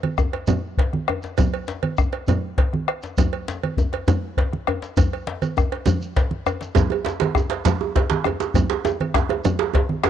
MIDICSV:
0, 0, Header, 1, 5, 480
1, 0, Start_track
1, 0, Tempo, 298805
1, 2217, Time_signature, 12, 3, 24, 8
1, 16223, End_track
2, 0, Start_track
2, 0, Title_t, "Bombo"
2, 287, Note_on_c, 9, 37, 90
2, 287, Note_on_c, 9, 43, 85
2, 448, Note_off_c, 9, 37, 0
2, 448, Note_off_c, 9, 43, 0
2, 535, Note_on_c, 9, 37, 28
2, 695, Note_off_c, 9, 37, 0
2, 1244, Note_on_c, 9, 43, 100
2, 1405, Note_off_c, 9, 43, 0
2, 1492, Note_on_c, 9, 37, 30
2, 1652, Note_off_c, 9, 37, 0
2, 1734, Note_on_c, 9, 37, 97
2, 1894, Note_off_c, 9, 37, 0
2, 2225, Note_on_c, 9, 43, 113
2, 2386, Note_off_c, 9, 43, 0
2, 3185, Note_on_c, 9, 37, 97
2, 3185, Note_on_c, 9, 43, 96
2, 3345, Note_off_c, 9, 37, 0
2, 3345, Note_off_c, 9, 43, 0
2, 3435, Note_on_c, 9, 37, 31
2, 3595, Note_off_c, 9, 37, 0
2, 4140, Note_on_c, 9, 43, 104
2, 4300, Note_off_c, 9, 43, 0
2, 4384, Note_on_c, 9, 37, 29
2, 4545, Note_off_c, 9, 37, 0
2, 4627, Note_on_c, 9, 37, 95
2, 4787, Note_off_c, 9, 37, 0
2, 5101, Note_on_c, 9, 43, 99
2, 5262, Note_off_c, 9, 43, 0
2, 6058, Note_on_c, 9, 43, 92
2, 6218, Note_off_c, 9, 43, 0
2, 6308, Note_on_c, 9, 37, 30
2, 6468, Note_off_c, 9, 37, 0
2, 7025, Note_on_c, 9, 43, 97
2, 7185, Note_off_c, 9, 43, 0
2, 7270, Note_on_c, 9, 37, 29
2, 7431, Note_off_c, 9, 37, 0
2, 7507, Note_on_c, 9, 37, 85
2, 7668, Note_off_c, 9, 37, 0
2, 7992, Note_on_c, 9, 43, 97
2, 8153, Note_off_c, 9, 43, 0
2, 8244, Note_on_c, 9, 37, 28
2, 8404, Note_off_c, 9, 37, 0
2, 8476, Note_on_c, 9, 37, 30
2, 8636, Note_off_c, 9, 37, 0
2, 8961, Note_on_c, 9, 37, 89
2, 8961, Note_on_c, 9, 43, 85
2, 9122, Note_off_c, 9, 37, 0
2, 9122, Note_off_c, 9, 43, 0
2, 9191, Note_on_c, 9, 37, 25
2, 9352, Note_off_c, 9, 37, 0
2, 9903, Note_on_c, 9, 43, 99
2, 10064, Note_off_c, 9, 43, 0
2, 10386, Note_on_c, 9, 37, 87
2, 10546, Note_off_c, 9, 37, 0
2, 10626, Note_on_c, 9, 37, 30
2, 10787, Note_off_c, 9, 37, 0
2, 10863, Note_on_c, 9, 43, 99
2, 11024, Note_off_c, 9, 43, 0
2, 11805, Note_on_c, 9, 37, 91
2, 11805, Note_on_c, 9, 43, 91
2, 11965, Note_off_c, 9, 37, 0
2, 11965, Note_off_c, 9, 43, 0
2, 12054, Note_on_c, 9, 37, 30
2, 12215, Note_off_c, 9, 37, 0
2, 12780, Note_on_c, 9, 43, 104
2, 12941, Note_off_c, 9, 43, 0
2, 13021, Note_on_c, 9, 37, 29
2, 13182, Note_off_c, 9, 37, 0
2, 13243, Note_on_c, 9, 37, 95
2, 13403, Note_off_c, 9, 37, 0
2, 13722, Note_on_c, 9, 43, 103
2, 13882, Note_off_c, 9, 43, 0
2, 14688, Note_on_c, 9, 37, 97
2, 14688, Note_on_c, 9, 43, 91
2, 14849, Note_off_c, 9, 37, 0
2, 14849, Note_off_c, 9, 43, 0
2, 14917, Note_on_c, 9, 37, 30
2, 15077, Note_off_c, 9, 37, 0
2, 15652, Note_on_c, 9, 43, 108
2, 15813, Note_off_c, 9, 43, 0
2, 15894, Note_on_c, 9, 37, 31
2, 16055, Note_off_c, 9, 37, 0
2, 16120, Note_on_c, 9, 37, 93
2, 16223, Note_off_c, 9, 37, 0
2, 16223, End_track
3, 0, Start_track
3, 0, Title_t, "Djembe"
3, 299, Note_on_c, 9, 62, 22
3, 299, Note_on_c, 9, 63, 69
3, 460, Note_off_c, 9, 62, 0
3, 460, Note_off_c, 9, 63, 0
3, 537, Note_on_c, 9, 62, 49
3, 698, Note_off_c, 9, 62, 0
3, 790, Note_on_c, 9, 64, 67
3, 951, Note_off_c, 9, 64, 0
3, 1272, Note_on_c, 9, 62, 68
3, 1433, Note_off_c, 9, 62, 0
3, 1755, Note_on_c, 9, 63, 65
3, 1916, Note_off_c, 9, 63, 0
3, 1989, Note_on_c, 9, 62, 52
3, 2150, Note_off_c, 9, 62, 0
3, 2221, Note_on_c, 9, 64, 61
3, 2382, Note_off_c, 9, 64, 0
3, 2697, Note_on_c, 9, 62, 65
3, 2858, Note_off_c, 9, 62, 0
3, 3186, Note_on_c, 9, 62, 20
3, 3186, Note_on_c, 9, 63, 64
3, 3346, Note_off_c, 9, 62, 0
3, 3346, Note_off_c, 9, 63, 0
3, 3413, Note_on_c, 9, 62, 49
3, 3574, Note_off_c, 9, 62, 0
3, 3662, Note_on_c, 9, 64, 69
3, 3823, Note_off_c, 9, 64, 0
3, 4142, Note_on_c, 9, 62, 68
3, 4303, Note_off_c, 9, 62, 0
3, 4874, Note_on_c, 9, 62, 53
3, 5035, Note_off_c, 9, 62, 0
3, 5110, Note_on_c, 9, 64, 64
3, 5271, Note_off_c, 9, 64, 0
3, 5593, Note_on_c, 9, 62, 78
3, 5754, Note_off_c, 9, 62, 0
3, 6075, Note_on_c, 9, 62, 23
3, 6075, Note_on_c, 9, 63, 72
3, 6235, Note_off_c, 9, 62, 0
3, 6235, Note_off_c, 9, 63, 0
3, 6312, Note_on_c, 9, 62, 56
3, 6472, Note_off_c, 9, 62, 0
3, 6548, Note_on_c, 9, 64, 74
3, 6709, Note_off_c, 9, 64, 0
3, 7042, Note_on_c, 9, 62, 74
3, 7202, Note_off_c, 9, 62, 0
3, 7521, Note_on_c, 9, 63, 75
3, 7682, Note_off_c, 9, 63, 0
3, 7748, Note_on_c, 9, 62, 56
3, 7908, Note_off_c, 9, 62, 0
3, 7983, Note_on_c, 9, 64, 74
3, 8144, Note_off_c, 9, 64, 0
3, 8238, Note_on_c, 9, 62, 23
3, 8398, Note_off_c, 9, 62, 0
3, 8468, Note_on_c, 9, 62, 73
3, 8628, Note_off_c, 9, 62, 0
3, 8949, Note_on_c, 9, 63, 76
3, 9109, Note_off_c, 9, 63, 0
3, 9192, Note_on_c, 9, 62, 56
3, 9353, Note_off_c, 9, 62, 0
3, 9433, Note_on_c, 9, 64, 76
3, 9594, Note_off_c, 9, 64, 0
3, 9903, Note_on_c, 9, 62, 81
3, 10063, Note_off_c, 9, 62, 0
3, 10382, Note_on_c, 9, 63, 76
3, 10543, Note_off_c, 9, 63, 0
3, 10613, Note_on_c, 9, 62, 54
3, 10774, Note_off_c, 9, 62, 0
3, 10840, Note_on_c, 9, 62, 101
3, 10852, Note_on_c, 9, 64, 71
3, 11001, Note_off_c, 9, 62, 0
3, 11012, Note_off_c, 9, 64, 0
3, 11084, Note_on_c, 9, 63, 76
3, 11245, Note_off_c, 9, 63, 0
3, 11319, Note_on_c, 9, 62, 81
3, 11340, Note_off_c, 9, 62, 0
3, 11340, Note_on_c, 9, 62, 75
3, 11501, Note_off_c, 9, 62, 0
3, 11564, Note_on_c, 9, 62, 100
3, 11725, Note_off_c, 9, 62, 0
3, 11805, Note_on_c, 9, 63, 80
3, 11824, Note_off_c, 9, 63, 0
3, 11824, Note_on_c, 9, 63, 77
3, 11985, Note_off_c, 9, 63, 0
3, 12044, Note_on_c, 9, 62, 77
3, 12058, Note_off_c, 9, 62, 0
3, 12058, Note_on_c, 9, 62, 55
3, 12218, Note_off_c, 9, 62, 0
3, 12289, Note_on_c, 9, 62, 103
3, 12296, Note_on_c, 9, 64, 70
3, 12449, Note_off_c, 9, 62, 0
3, 12457, Note_off_c, 9, 64, 0
3, 12543, Note_on_c, 9, 63, 80
3, 12704, Note_off_c, 9, 63, 0
3, 12780, Note_on_c, 9, 62, 75
3, 12787, Note_off_c, 9, 62, 0
3, 12787, Note_on_c, 9, 62, 75
3, 12947, Note_off_c, 9, 62, 0
3, 13006, Note_on_c, 9, 62, 101
3, 13166, Note_off_c, 9, 62, 0
3, 13258, Note_on_c, 9, 63, 80
3, 13267, Note_off_c, 9, 63, 0
3, 13267, Note_on_c, 9, 63, 73
3, 13428, Note_off_c, 9, 63, 0
3, 13497, Note_on_c, 9, 62, 74
3, 13498, Note_off_c, 9, 62, 0
3, 13498, Note_on_c, 9, 62, 51
3, 13659, Note_off_c, 9, 62, 0
3, 13723, Note_on_c, 9, 64, 66
3, 13883, Note_off_c, 9, 64, 0
3, 13970, Note_on_c, 9, 62, 99
3, 14131, Note_off_c, 9, 62, 0
3, 14212, Note_on_c, 9, 62, 75
3, 14214, Note_on_c, 9, 63, 87
3, 14373, Note_off_c, 9, 62, 0
3, 14375, Note_off_c, 9, 63, 0
3, 14692, Note_on_c, 9, 62, 109
3, 14707, Note_off_c, 9, 62, 0
3, 14707, Note_on_c, 9, 62, 25
3, 14707, Note_on_c, 9, 63, 78
3, 14868, Note_off_c, 9, 62, 0
3, 14868, Note_off_c, 9, 63, 0
3, 14928, Note_on_c, 9, 63, 81
3, 14941, Note_on_c, 9, 62, 56
3, 15089, Note_off_c, 9, 63, 0
3, 15102, Note_off_c, 9, 62, 0
3, 15182, Note_on_c, 9, 64, 78
3, 15342, Note_off_c, 9, 64, 0
3, 15406, Note_on_c, 9, 62, 101
3, 15566, Note_off_c, 9, 62, 0
3, 15638, Note_on_c, 9, 63, 76
3, 15662, Note_on_c, 9, 62, 79
3, 15799, Note_off_c, 9, 63, 0
3, 15822, Note_off_c, 9, 62, 0
3, 16124, Note_on_c, 9, 62, 105
3, 16134, Note_on_c, 9, 63, 82
3, 16223, Note_off_c, 9, 62, 0
3, 16223, Note_off_c, 9, 63, 0
3, 16223, End_track
4, 0, Start_track
4, 0, Title_t, "Shekere"
4, 283, Note_on_c, 9, 82, 18
4, 443, Note_off_c, 9, 82, 0
4, 759, Note_on_c, 9, 82, 58
4, 920, Note_off_c, 9, 82, 0
4, 1964, Note_on_c, 9, 82, 14
4, 2124, Note_off_c, 9, 82, 0
4, 2212, Note_on_c, 9, 82, 49
4, 2372, Note_off_c, 9, 82, 0
4, 2692, Note_on_c, 9, 82, 16
4, 2852, Note_off_c, 9, 82, 0
4, 3170, Note_on_c, 9, 82, 17
4, 3331, Note_off_c, 9, 82, 0
4, 3654, Note_on_c, 9, 82, 51
4, 3814, Note_off_c, 9, 82, 0
4, 4854, Note_on_c, 9, 82, 16
4, 5015, Note_off_c, 9, 82, 0
4, 5104, Note_on_c, 9, 82, 58
4, 5265, Note_off_c, 9, 82, 0
4, 5593, Note_on_c, 9, 82, 18
4, 5753, Note_off_c, 9, 82, 0
4, 6079, Note_on_c, 9, 82, 18
4, 6240, Note_off_c, 9, 82, 0
4, 6552, Note_on_c, 9, 82, 56
4, 6713, Note_off_c, 9, 82, 0
4, 7759, Note_on_c, 9, 82, 18
4, 7920, Note_off_c, 9, 82, 0
4, 7986, Note_on_c, 9, 82, 61
4, 8146, Note_off_c, 9, 82, 0
4, 8714, Note_on_c, 9, 82, 19
4, 8875, Note_off_c, 9, 82, 0
4, 8943, Note_on_c, 9, 82, 19
4, 9103, Note_off_c, 9, 82, 0
4, 9416, Note_on_c, 9, 82, 54
4, 9577, Note_off_c, 9, 82, 0
4, 9668, Note_on_c, 9, 82, 19
4, 9829, Note_off_c, 9, 82, 0
4, 9898, Note_on_c, 9, 82, 19
4, 10059, Note_off_c, 9, 82, 0
4, 10382, Note_on_c, 9, 82, 19
4, 10543, Note_off_c, 9, 82, 0
4, 10632, Note_on_c, 9, 82, 18
4, 10793, Note_off_c, 9, 82, 0
4, 10869, Note_on_c, 9, 82, 67
4, 11029, Note_off_c, 9, 82, 0
4, 11355, Note_on_c, 9, 82, 22
4, 11516, Note_off_c, 9, 82, 0
4, 11839, Note_on_c, 9, 82, 22
4, 12000, Note_off_c, 9, 82, 0
4, 12294, Note_on_c, 9, 82, 67
4, 12454, Note_off_c, 9, 82, 0
4, 13500, Note_on_c, 9, 82, 19
4, 13661, Note_off_c, 9, 82, 0
4, 13740, Note_on_c, 9, 82, 67
4, 13901, Note_off_c, 9, 82, 0
4, 14218, Note_on_c, 9, 82, 21
4, 14378, Note_off_c, 9, 82, 0
4, 14703, Note_on_c, 9, 82, 20
4, 14863, Note_off_c, 9, 82, 0
4, 15173, Note_on_c, 9, 82, 61
4, 15333, Note_off_c, 9, 82, 0
4, 16223, End_track
5, 0, Start_track
5, 0, Title_t, "Drums"
5, 52, Note_on_c, 9, 56, 47
5, 54, Note_on_c, 9, 63, 58
5, 213, Note_off_c, 9, 56, 0
5, 214, Note_off_c, 9, 63, 0
5, 534, Note_on_c, 9, 56, 46
5, 695, Note_off_c, 9, 56, 0
5, 763, Note_on_c, 9, 64, 74
5, 778, Note_on_c, 9, 56, 46
5, 924, Note_off_c, 9, 64, 0
5, 939, Note_off_c, 9, 56, 0
5, 1262, Note_on_c, 9, 56, 47
5, 1423, Note_off_c, 9, 56, 0
5, 1499, Note_on_c, 9, 63, 55
5, 1660, Note_off_c, 9, 63, 0
5, 1737, Note_on_c, 9, 56, 46
5, 1898, Note_off_c, 9, 56, 0
5, 2211, Note_on_c, 9, 56, 57
5, 2216, Note_on_c, 9, 64, 71
5, 2372, Note_off_c, 9, 56, 0
5, 2377, Note_off_c, 9, 64, 0
5, 2467, Note_on_c, 9, 56, 48
5, 2627, Note_off_c, 9, 56, 0
5, 2935, Note_on_c, 9, 56, 49
5, 2937, Note_on_c, 9, 63, 55
5, 3095, Note_off_c, 9, 56, 0
5, 3098, Note_off_c, 9, 63, 0
5, 3419, Note_on_c, 9, 56, 47
5, 3580, Note_off_c, 9, 56, 0
5, 3665, Note_on_c, 9, 64, 68
5, 3678, Note_on_c, 9, 56, 51
5, 3825, Note_off_c, 9, 64, 0
5, 3839, Note_off_c, 9, 56, 0
5, 4152, Note_on_c, 9, 56, 51
5, 4312, Note_off_c, 9, 56, 0
5, 4393, Note_on_c, 9, 63, 51
5, 4554, Note_off_c, 9, 63, 0
5, 4637, Note_on_c, 9, 56, 50
5, 4797, Note_off_c, 9, 56, 0
5, 5112, Note_on_c, 9, 64, 64
5, 5113, Note_on_c, 9, 56, 60
5, 5273, Note_off_c, 9, 56, 0
5, 5273, Note_off_c, 9, 64, 0
5, 5347, Note_on_c, 9, 56, 52
5, 5508, Note_off_c, 9, 56, 0
5, 5838, Note_on_c, 9, 56, 49
5, 5838, Note_on_c, 9, 63, 50
5, 5999, Note_off_c, 9, 56, 0
5, 5999, Note_off_c, 9, 63, 0
5, 6324, Note_on_c, 9, 56, 47
5, 6484, Note_off_c, 9, 56, 0
5, 6552, Note_on_c, 9, 64, 68
5, 6557, Note_on_c, 9, 56, 48
5, 6713, Note_off_c, 9, 64, 0
5, 6718, Note_off_c, 9, 56, 0
5, 7033, Note_on_c, 9, 56, 51
5, 7194, Note_off_c, 9, 56, 0
5, 7281, Note_on_c, 9, 63, 48
5, 7442, Note_off_c, 9, 63, 0
5, 7515, Note_on_c, 9, 56, 46
5, 7675, Note_off_c, 9, 56, 0
5, 7987, Note_on_c, 9, 63, 18
5, 7987, Note_on_c, 9, 64, 60
5, 7996, Note_on_c, 9, 56, 56
5, 8148, Note_off_c, 9, 63, 0
5, 8148, Note_off_c, 9, 64, 0
5, 8157, Note_off_c, 9, 56, 0
5, 8247, Note_on_c, 9, 56, 44
5, 8407, Note_off_c, 9, 56, 0
5, 8462, Note_on_c, 9, 63, 21
5, 8623, Note_off_c, 9, 63, 0
5, 8705, Note_on_c, 9, 63, 50
5, 8708, Note_on_c, 9, 56, 48
5, 8865, Note_off_c, 9, 63, 0
5, 8869, Note_off_c, 9, 56, 0
5, 9191, Note_on_c, 9, 56, 47
5, 9352, Note_off_c, 9, 56, 0
5, 9409, Note_on_c, 9, 63, 20
5, 9409, Note_on_c, 9, 64, 63
5, 9441, Note_on_c, 9, 56, 44
5, 9569, Note_off_c, 9, 63, 0
5, 9569, Note_off_c, 9, 64, 0
5, 9602, Note_off_c, 9, 56, 0
5, 9658, Note_on_c, 9, 63, 21
5, 9819, Note_off_c, 9, 63, 0
5, 9909, Note_on_c, 9, 56, 49
5, 9909, Note_on_c, 9, 63, 21
5, 10069, Note_off_c, 9, 56, 0
5, 10069, Note_off_c, 9, 63, 0
5, 10136, Note_on_c, 9, 63, 51
5, 10296, Note_off_c, 9, 63, 0
5, 10389, Note_on_c, 9, 56, 46
5, 10549, Note_off_c, 9, 56, 0
5, 10625, Note_on_c, 9, 63, 23
5, 10786, Note_off_c, 9, 63, 0
5, 10850, Note_on_c, 9, 64, 67
5, 10861, Note_on_c, 9, 56, 58
5, 11011, Note_off_c, 9, 64, 0
5, 11022, Note_off_c, 9, 56, 0
5, 11113, Note_on_c, 9, 56, 46
5, 11274, Note_off_c, 9, 56, 0
5, 11589, Note_on_c, 9, 63, 58
5, 11591, Note_on_c, 9, 56, 48
5, 11749, Note_off_c, 9, 63, 0
5, 11752, Note_off_c, 9, 56, 0
5, 12073, Note_on_c, 9, 56, 49
5, 12233, Note_off_c, 9, 56, 0
5, 12299, Note_on_c, 9, 64, 72
5, 12321, Note_on_c, 9, 56, 48
5, 12460, Note_off_c, 9, 64, 0
5, 12482, Note_off_c, 9, 56, 0
5, 12806, Note_on_c, 9, 56, 53
5, 12967, Note_off_c, 9, 56, 0
5, 13029, Note_on_c, 9, 63, 55
5, 13189, Note_off_c, 9, 63, 0
5, 13278, Note_on_c, 9, 56, 49
5, 13439, Note_off_c, 9, 56, 0
5, 13739, Note_on_c, 9, 56, 65
5, 13740, Note_on_c, 9, 64, 79
5, 13900, Note_off_c, 9, 56, 0
5, 13901, Note_off_c, 9, 64, 0
5, 13986, Note_on_c, 9, 56, 50
5, 14146, Note_off_c, 9, 56, 0
5, 14464, Note_on_c, 9, 63, 56
5, 14471, Note_on_c, 9, 56, 53
5, 14624, Note_off_c, 9, 63, 0
5, 14631, Note_off_c, 9, 56, 0
5, 14941, Note_on_c, 9, 56, 51
5, 15102, Note_off_c, 9, 56, 0
5, 15177, Note_on_c, 9, 64, 69
5, 15181, Note_on_c, 9, 56, 52
5, 15338, Note_off_c, 9, 64, 0
5, 15341, Note_off_c, 9, 56, 0
5, 15655, Note_on_c, 9, 56, 53
5, 15816, Note_off_c, 9, 56, 0
5, 15892, Note_on_c, 9, 63, 59
5, 16053, Note_off_c, 9, 63, 0
5, 16133, Note_on_c, 9, 56, 49
5, 16223, Note_off_c, 9, 56, 0
5, 16223, End_track
0, 0, End_of_file